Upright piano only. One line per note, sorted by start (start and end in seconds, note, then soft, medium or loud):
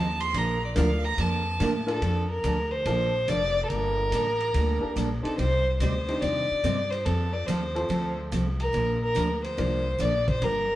0.75 1.01 A#3 medium
0.75 1.01 D4 medium
0.75 1.01 F4 medium
0.75 1.01 A#4 medium
0.75 1.01 D5 medium
1.86 2.00 A#3 medium
1.86 2.00 D4 medium
1.86 2.00 F4 medium
1.86 2.00 A4 medium
1.86 2.00 A#4 medium
2.86 3.11 A#3 medium
2.86 3.11 D4 medium
2.86 3.11 F4 medium
2.86 3.11 A4 medium
2.86 3.12 A#4 medium
4.81 4.94 A#3 medium
4.81 4.94 D4 medium
4.81 4.94 G4 medium
4.81 4.94 A4 medium
4.81 4.94 A#4 medium
5.22 5.36 C4 medium
5.22 5.36 D4 medium
5.22 5.36 D#4 medium
5.22 5.36 G4 medium
5.22 5.36 C5 medium
6.08 6.61 C4 medium
6.08 6.61 D4 medium
6.08 6.61 D#4 medium
6.08 6.61 G4 medium
6.08 6.62 C5 medium
7.75 8.29 A3 medium
7.75 8.29 C4 medium
7.75 8.29 F4 medium
7.75 8.29 A4 medium
7.75 8.29 C5 medium
9.58 9.83 A#3 medium
9.58 9.83 D4 medium
9.58 9.84 F4 medium
9.58 9.84 A#4 medium
9.58 9.84 D5 medium